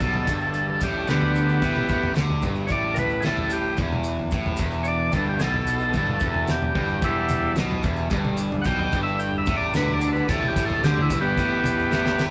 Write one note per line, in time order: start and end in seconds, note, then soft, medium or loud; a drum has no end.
0.00 0.25 B1 medium
0.00 1.91 E2 medium
0.00 0.26 B2 medium
0.00 3.74 D3 medium
0.00 0.67 E3 medium
0.00 3.75 G3 medium
0.00 3.75 G4 medium
0.00 0.40 A4 medium
0.00 1.60 D5 medium
0.00 kick loud
0.00 maracas medium
0.05 2.50 B2 medium
0.14 floor tom medium
0.27 0.77 G1 loud
0.27 0.80 G2 loud
0.27 kick loud
0.27 maracas medium
0.40 0.67 A4 medium
0.40 maracas soft
0.54 maracas medium
0.67 1.29 E3 medium
0.67 0.81 A4 medium
0.80 1.06 A1 medium
0.80 1.07 A2 loud
0.80 1.08 G4 medium
0.80 kick loud
0.80 floor tom medium
0.80 maracas loud
1.07 1.58 D2 medium
1.07 1.61 D3 loud
1.07 2.12 B3 medium
1.07 2.14 G4 loud
1.07 snare medium
1.07 mid tom medium
1.07 maracas medium
1.22 floor tom medium
1.29 3.13 E3 medium
1.35 maracas medium
1.49 maracas soft
1.62 1.87 A1 medium
1.62 1.88 A2 loud
1.62 3.76 E5 medium
1.62 kick loud
1.62 floor tom medium
1.62 maracas medium
1.76 mid tom medium
1.88 2.15 A1 medium
1.88 4.33 E2 medium
1.88 2.15 A2 medium
1.88 kick loud
1.88 maracas medium
2.03 floor tom medium
2.15 2.42 D2 medium
2.15 2.42 D3 loud
2.15 snare medium
2.15 maracas medium
2.30 floor tom medium
2.42 2.68 G1 loud
2.42 2.69 G2 medium
2.42 kick medium
2.42 mid tom medium
2.42 maracas medium
2.51 4.97 B2 medium
2.55 maracas soft
2.67 3.20 A1 medium
2.67 3.23 A2 medium
2.67 2.70 C#5 medium
2.67 kick loud
2.67 maracas medium
2.72 2.97 D5 loud
2.94 2.97 A#4 medium
2.94 floor tom medium
2.94 mid tom medium
2.94 maracas medium
2.99 3.24 B4 loud
3.09 3.73 E3 medium
3.09 maracas soft
3.20 3.77 A2 loud
3.20 3.24 G#4 medium
3.20 mid tom medium
3.20 maracas medium
3.25 3.75 A1 medium
3.25 3.51 A4 medium
3.25 snare medium
3.37 floor tom medium
3.50 3.78 G4 medium
3.50 maracas medium
3.73 5.59 E3 medium
3.77 4.29 E1 medium
3.77 4.31 E2 loud
3.77 8.07 E3 medium
3.77 8.07 B3 medium
3.77 8.07 G4 medium
3.77 8.07 B4 medium
3.77 kick loud
3.77 floor tom medium
3.77 maracas medium
3.93 mid tom medium
4.03 maracas medium
4.19 floor tom medium
4.31 4.57 A1 medium
4.31 6.80 E2 medium
4.31 4.58 A2 medium
4.31 kick loud
4.31 maracas medium
4.46 floor tom medium
4.57 5.10 E1 loud
4.57 5.12 E2 medium
4.57 kick loud
4.57 maracas medium
4.71 maracas soft
4.83 4.86 C#5 medium
4.83 maracas medium
4.88 5.13 D5 medium
4.97 7.42 B2 medium
5.12 5.39 G1 medium
5.12 5.39 G2 loud
5.12 kick medium
5.12 floor tom medium
5.12 maracas medium
5.16 5.27 A4 medium
5.29 5.41 G4 medium
5.39 5.91 B1 medium
5.39 5.93 B2 loud
5.39 5.42 G#4 medium
5.39 snare medium
5.39 mid tom medium
5.39 maracas medium
5.44 5.95 A4 loud
5.54 floor tom medium
5.59 6.20 E3 medium
5.67 maracas medium
5.80 maracas soft
5.93 6.20 G1 medium
5.93 6.20 G2 loud
5.93 6.48 A4 medium
5.93 kick medium
5.93 floor tom medium
5.93 maracas medium
6.07 mid tom medium
6.20 6.72 E1 medium
6.20 6.75 E2 medium
6.20 8.04 E3 medium
6.20 kick loud
6.20 maracas loud
6.35 floor tom medium
6.47 7.02 G4 medium
6.47 snare medium
6.47 maracas medium
6.62 floor tom medium
6.75 7.01 G1 loud
6.75 7.02 G2 loud
6.75 kick loud
6.75 mid tom medium
6.80 9.28 E2 medium
6.88 maracas soft
7.02 7.53 E1 loud
7.02 7.56 E2 medium
7.02 7.54 G3 medium
7.02 7.56 E4 loud
7.02 kick loud
7.02 maracas medium
7.29 floor tom medium
7.29 mid tom medium
7.29 maracas loud
7.42 9.89 B2 medium
7.56 7.82 B1 loud
7.56 7.83 B2 loud
7.56 snare medium
7.56 mid tom medium
7.56 maracas medium
7.71 floor tom medium
7.83 8.09 E1 loud
7.83 8.10 E2 loud
7.83 kick loud
7.83 maracas medium
7.96 maracas soft
8.04 8.66 E3 medium
8.10 8.62 G1 medium
8.10 8.64 G2 loud
8.10 12.31 D3 medium
8.10 12.31 G3 medium
8.10 12.31 G4 medium
8.10 10.26 D5 medium
8.10 kick loud
8.10 floor tom medium
8.10 maracas medium
8.25 mid tom medium
8.37 maracas medium
8.52 floor tom medium
8.62 8.65 F#5 medium
8.62 maracas medium
8.66 8.91 B1 loud
8.66 8.92 B2 loud
8.66 10.52 E3 medium
8.66 9.01 G5 loud
8.66 kick loud
8.79 floor tom medium
8.92 9.43 G1 loud
8.92 9.46 G2 loud
8.92 kick loud
8.92 maracas loud
9.03 9.20 E5 loud
9.03 maracas soft
9.19 9.37 G5 medium
9.19 maracas medium
9.28 11.74 E2 medium
9.38 9.55 E5 medium
9.46 9.72 A1 medium
9.46 9.74 A2 loud
9.46 kick loud
9.46 floor tom medium
9.46 maracas loud
9.57 9.74 D5 medium
9.73 10.24 D2 medium
9.73 10.28 D3 loud
9.73 9.93 B4 medium
9.73 snare medium
9.73 mid tom medium
9.73 maracas medium
9.88 12.31 B2 medium
9.88 floor tom medium
9.94 10.10 D5 medium
10.01 maracas loud
10.12 10.29 B4 medium
10.12 maracas soft
10.28 10.54 A1 medium
10.28 10.55 A2 loud
10.28 10.47 A4 medium
10.28 12.31 C#5 medium
10.28 kick loud
10.28 floor tom medium
10.28 maracas medium
10.43 mid tom medium
10.48 11.14 E3 medium
10.48 10.65 G4 loud
10.56 10.81 A1 medium
10.56 10.82 A2 loud
10.56 kick loud
10.56 maracas loud
10.65 10.82 A4 medium
10.70 floor tom medium
10.82 11.08 D2 medium
10.82 11.09 D3 loud
10.82 11.01 G4 loud
10.82 snare medium
10.82 maracas medium
10.97 floor tom medium
11.02 11.19 E4 medium
11.10 11.36 G1 loud
11.10 11.37 G2 loud
11.10 12.31 E3 medium
11.10 kick loud
11.10 mid tom medium
11.10 maracas loud
11.21 12.25 B3 loud
11.21 12.26 G4 loud
11.37 11.88 A1 loud
11.37 11.90 A2 medium
11.37 kick loud
11.37 maracas medium
11.64 floor tom medium
11.64 mid tom medium
11.64 maracas medium
11.75 12.31 E2 medium
11.79 maracas soft
11.91 12.31 A1 medium
11.91 12.31 A2 loud
11.91 snare medium
11.91 maracas medium
12.06 snare medium
12.19 snare medium
12.19 maracas medium